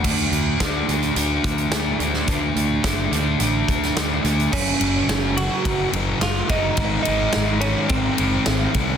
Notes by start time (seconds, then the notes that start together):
0.03 D2 D3 A3 D4, kick, crash
0.18 closed hi-hat
0.32 D2, closed hi-hat
0.59 D2 D3 A3 D4, kick, snare, closed hi-hat
0.87 D2 D3 A3 D4, closed hi-hat
1.03 closed hi-hat
1.15 D2 D3 A3 D4, closed hi-hat
1.44 D2, kick, closed hi-hat
1.58 closed hi-hat
1.70 D2 D3 A3 D4, snare, closed hi-hat
2.00 D2 D3 A3 D4, closed hi-hat
2.14 snare
2.28 D2 D3 A3 D4, kick, closed hi-hat
2.56 D2, closed hi-hat
2.83 F#1 D3 A3 D4, kick, snare, closed hi-hat
3.12 D2 D3 A3 D4, closed hi-hat
3.40 A1 D3 A3 D4, closed hi-hat
3.68 D2, kick, closed hi-hat
3.83 snare, closed hi-hat
3.96 D2 D3 A3 D4, snare, closed hi-hat
4.23 D2 D3 A3 D4, closed hi-hat
4.40 closed hi-hat
4.51 F#1 F#2 C#3 F#3 C#4, kick, crash
4.80 F#1 F#2 C#3 F#3, ride
5.08 F#1 F#2 C#3 F#3, snare, ride
5.37 F#2 C#3 F#3 F#4, ride
5.65 F#1 F#2 C#3 F#3, kick, ride
5.92 F#1 F#2 C#3 F#3, ride
6.20 F#1 F#2 C#3 F#3 F4, snare, ride
6.48 F#1 F#2 C#3 F#3 D#4, kick, ride
6.77 G#1 G#2 D#3 G#3, kick, ride
7.03 G#2 D#3 D#4, ride
7.07 G#1 G#3
7.33 G#1 G#2 D#3 G#3, snare, ride
7.61 G#2 D#3 G#3 C#4, ride
7.89 G#1 G#2 D#3 G#3 C4, kick, ride
8.18 F#1 G#2 D#3 G#3, ride
8.46 G#1 G#2 D#3 G#3, snare, ride
8.74 C2 G#2 D#3 G#3, kick, ride